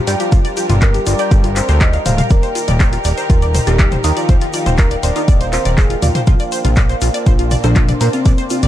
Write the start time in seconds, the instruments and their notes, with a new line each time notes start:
Already playing: string section G3 D4 F4 A#4, ambient pad G4 D5 G5 A#5
0.07 analog synth bass G2, synth stab G4 D5 G5, synth arpeggio sound D5, open hi-hat, shaker
0.20 soft synth lead F4, synth arpeggio sound G4, closed hi-hat, shaker
0.32 analog synth bass G1, synth arpeggio sound F4, kick, closed hi-hat, shaker
0.45 synth arpeggio sound D5, closed hi-hat, shaker
0.57 soft synth lead F4, synth arpeggio sound G4, open hi-hat, shaker
0.70 analog synth bass G1, synth arpeggio sound F4, closed hi-hat, mid tom, shaker
0.81 soft synth lead A#4, synth arpeggio sound D5, kick, clap, closed hi-hat, shaker
0.94 synth arpeggio sound G4, closed hi-hat, shaker
1.06 analog synth bass G1, synth arpeggio sound F4, soft synth lead D5, open hi-hat, shaker
1.18 synth stab G4 D5 G5, synth arpeggio sound D5, closed hi-hat, shaker
1.31 analog synth bass G1, synth arpeggio sound G4, kick, closed hi-hat, shaker
1.44 synth arpeggio sound F4, closed hi-hat, shaker
1.56 synth arpeggio sound F4, soft synth lead C5, clap, open hi-hat, shaker
1.69 analog synth bass D2, synth arpeggio sound C5, closed hi-hat, shaker
1.81 synth arpeggio sound C5, soft synth lead D#5, kick, clap, closed hi-hat, shaker
1.93 synth arpeggio sound F5, closed hi-hat, shaker
2.06 analog synth bass D1, synth arpeggio sound C5, soft synth lead F5, open hi-hat, mid tom, shaker
2.18 synth arpeggio sound F5, closed hi-hat, mid tom, shaker
2.30 analog synth bass D#1, string section D#3 D#4 G4, ambient pad D#4, soft synth lead A#4, synth arpeggio sound D5, kick, closed hi-hat, shaker
2.43 synth arpeggio sound C5, closed hi-hat, shaker
2.55 synth arpeggio sound F4, open hi-hat, shaker
2.68 analog synth bass D#1, synth arpeggio sound D5, closed hi-hat, mid tom, shaker
2.74 ambient pad A#4
2.80 synth arpeggio sound C5, kick, clap, closed hi-hat, shaker
2.93 synth arpeggio sound F4, closed hi-hat, shaker
2.98 ambient pad F5
3.04 analog synth bass D#1, synth arpeggio sound D5, open hi-hat, shaker
3.18 synth arpeggio sound C5, closed hi-hat, shaker
3.30 analog synth bass D#1, synth arpeggio sound F4, soft synth lead A#4, kick, closed hi-hat, shaker
3.42 synth arpeggio sound D5, closed hi-hat, shaker
3.55 synth arpeggio sound C5, open hi-hat, mid tom, shaker
3.67 analog synth bass D#1, synth stab D#4 A#4 D#5, synth arpeggio sound F4, soft synth lead G4, closed hi-hat, shaker
3.79 synth arpeggio sound D5, kick, clap, closed hi-hat, shaker
3.91 synth arpeggio sound C5, closed hi-hat, mid tom, shaker
4.04 analog synth bass D#2, synth stab D#4 A#4 D#5, synth arpeggio sound F4, open hi-hat, shaker
4.17 soft synth lead F4, synth arpeggio sound D5, closed hi-hat, shaker
4.29 analog synth bass D#1, synth arpeggio sound C5, kick, closed hi-hat, shaker
4.41 synth arpeggio sound F4, closed hi-hat, shaker
4.53 soft synth lead F4, synth arpeggio sound D5, open hi-hat, shaker
4.66 analog synth bass D#1, synth arpeggio sound C5, closed hi-hat, mid tom, shaker
4.78 synth arpeggio sound F4, soft synth lead A#4, kick, clap, closed hi-hat, shaker
4.91 synth arpeggio sound D5, closed hi-hat, shaker
5.03 analog synth bass D#1, synth arpeggio sound C5, soft synth lead D5, open hi-hat, shaker
5.16 synth stab D#4 A#4 D#5, synth arpeggio sound F4, closed hi-hat, shaker
5.28 analog synth bass D#1, synth arpeggio sound D5, kick, closed hi-hat, shaker
5.41 synth arpeggio sound C5, closed hi-hat, shaker
5.53 synth arpeggio sound F4, soft synth lead C5, clap, open hi-hat, shaker
5.65 analog synth bass D#1, synth arpeggio sound D5, closed hi-hat, shaker
5.78 soft synth lead G#4, synth arpeggio sound C5, kick, clap, closed hi-hat, shaker
5.90 synth arpeggio sound F4, closed hi-hat, shaker
6.02 analog synth bass D#2, soft synth lead F4, synth arpeggio sound D5, open hi-hat, mid tom, shaker
6.15 synth arpeggio sound C5, closed hi-hat, mid tom, shaker
6.27 analog synth bass A#1, string section A#3 C4 D4, synth arpeggio sound F4, soft synth lead F4, kick, closed hi-hat, shaker
6.39 synth arpeggio sound D5, closed hi-hat, shaker
6.50 synth arpeggio sound C5, ambient pad C6, open hi-hat, shaker
6.65 analog synth bass A#1, synth arpeggio sound F4, closed hi-hat, mid tom, shaker
6.76 synth arpeggio sound D5, kick, clap, closed hi-hat, shaker
6.89 synth arpeggio sound C5, closed hi-hat, shaker
7.01 analog synth bass A#1, synth arpeggio sound F4, open hi-hat, shaker
7.14 synth arpeggio sound D5, closed hi-hat, shaker
7.19 ambient pad D6
7.26 analog synth bass A#1, soft synth lead F4, synth arpeggio sound C5, kick, closed hi-hat, shaker
7.39 synth arpeggio sound F4, closed hi-hat, shaker
7.51 synth arpeggio sound D5, open hi-hat, mid tom, shaker
7.64 analog synth bass A#1, synth stab A#3 F4 A#4, soft synth lead D4, synth arpeggio sound C5, closed hi-hat, shaker
7.75 synth arpeggio sound F4, kick, clap, closed hi-hat, shaker
7.89 synth arpeggio sound D5, closed hi-hat, mid tom, shaker
8.01 analog synth bass A#2, synth stab A#3 F4 A#4, synth arpeggio sound C5, open hi-hat, shaker
8.13 soft synth lead C4, synth arpeggio sound F4, closed hi-hat, shaker
8.25 analog synth bass A#1, synth arpeggio sound D5, kick, closed hi-hat, shaker
8.38 synth arpeggio sound C5, closed hi-hat, shaker
8.50 soft synth lead C4, synth arpeggio sound F4, open hi-hat, shaker
8.63 analog synth bass A#1, synth arpeggio sound D5, closed hi-hat, mid tom, shaker